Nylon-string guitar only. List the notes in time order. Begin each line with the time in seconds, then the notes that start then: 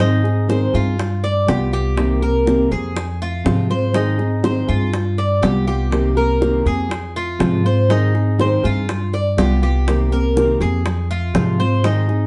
0.00 D#3 G#3 C4 D#4 G#4
0.24 C4 D#4 G#4
0.48 D#3 G#3 C4 D#4 G#4
0.73 C4 D#4 G#4
0.98 muted nylon-string guitar stroke
1.47 G3 B3 F4
1.71 B3 F4
1.96 C3 D#3 A#3 C4 G4
2.21 A#3 C4 G4
2.46 C3 D#3 A#3 C4 G4
2.70 A#3 C4 G4
2.95 muted nylon-string guitar stroke
3.44 C3 F3 G#3 C4 F4
3.70 G#3 C4 F4
3.93 D#3 G#3 C4 D#4 G#4
4.18 C4 D#4 G#4
4.43 D#3 G#3 C4 D#4 G#4
4.68 C4 D#4 G#4
4.92 muted nylon-string guitar stroke
5.41 G3 B3 F4
5.67 B3 F4
5.90 C3 D#3 A#3 C4 G4
6.15 A#3 C4 G4
6.41 C3 D#3 A#3 C4 G4
6.65 A#3 C4 G4
6.89 muted nylon-string guitar stroke
7.39 C3 F3 G#3 C4 F4
7.64 G#3 C4 F4
7.88 D#3 G#3 C4 D#4 G#4
8.14 C4 D#4 G#4
8.38 D#3 G#3 C4 D#4 G#4
8.64 C4 D#4 G#4
8.88 muted nylon-string guitar stroke
9.37 G3 B3 F4
9.62 B3 F4
9.87 C3 D#3 A#3 C4 G4
10.11 A#3 C4 G4
10.35 C3 D#3 A#3 C4 G4
10.60 A#3 C4 G4
10.85 muted nylon-string guitar stroke
11.34 C3 F3 G#3 C4 F4
11.59 G#3 C4 F4
11.83 D#3 G#3 C4 D#4 G#4
12.08 C4 D#4 G#4